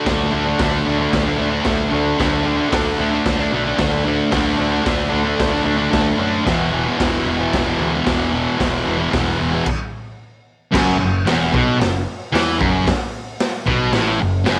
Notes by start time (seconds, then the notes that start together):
0.05 D2 D3 A3 D4, kick, snare, open hi-hat
0.31 D2 D3 A3 D4
0.46 A3 D4
0.59 D2 D3 A3 D4, kick, snare, open hi-hat
0.86 D2 D3 A3 D4
0.99 A3 D4
1.13 D2, kick, snare, open hi-hat
1.25 A3 D4
1.37 D2 D3 A3
1.41 D4
1.51 A3 D4
1.64 D2 D3 A3 D4, kick, snare, open hi-hat
1.90 D2 D3 A3 D4
2.18 D2 D3 A3 D4, kick, snare, open hi-hat
2.43 D3 A3
2.47 D4
2.57 A3 D4
2.69 D2 D3 A3 D4, kick, snare, open hi-hat
2.98 D2 D3 A3 D4
3.11 A3 D4
3.26 D2, kick, snare, open hi-hat
3.38 A3 D4
3.52 B1 D3 A3 D4
3.65 A3 D4
3.77 D2 D3 A3 D4, kick, snare, open hi-hat
4.05 D3 A3 D4
4.32 D2 D3 A3 D4, kick, snare, open hi-hat
4.57 D2 D3 A3 D4
4.71 A3 D4
4.82 D3 A3 D4, kick, snare, open hi-hat
4.87 D2
5.10 D2 D3 A3 D4
5.25 A3 D4
5.39 D2, kick, snare, open hi-hat
5.50 A3 D4
5.62 D2 D3 A3 D4
5.78 A3 D4
5.91 D2 D3 A3 D4, kick, snare, open hi-hat
6.17 F#2 D3 A3 D4
6.44 E1 E2 B2 E3, kick, snare, open hi-hat
6.71 E2 B2 E3
6.85 B2 E3
6.97 E1 E2 B2 E3, kick, snare, open hi-hat
7.25 E1 E2 B2 E3
7.38 B2 E3
7.53 E1, kick, snare, open hi-hat
7.65 B2 E3
7.78 D2 E2 B2 E3
7.93 B2 E3
8.05 E1 E2 B2 E3, kick, snare, open hi-hat
8.31 E2 B2 E3
8.58 E1 E2 B2 E3, kick, snare, open hi-hat
8.84 E1 E2 B2 E3
8.98 B2 E3
9.10 E1 E2 B2 E3, kick, snare, open hi-hat
9.38 E1 E2 B2 E3
9.51 B2 E3
9.66 kick, crash
10.71 F#1 F#2, kick, snare, crash
10.98 F#1 F#2
11.25 E1 E2, snare, open hi-hat
11.52 B1 B2, kick
11.79 F#1 F#2, snare, open hi-hat
12.32 E2 E3, snare, open hi-hat
12.58 F#1 F#2, kick
12.87 kick, snare, open hi-hat
13.40 snare, open hi-hat
13.66 B1 B2, kick
13.93 A1 A2, snare, open hi-hat
14.19 F#1 F#2
14.45 F#1 F#2, snare, open hi-hat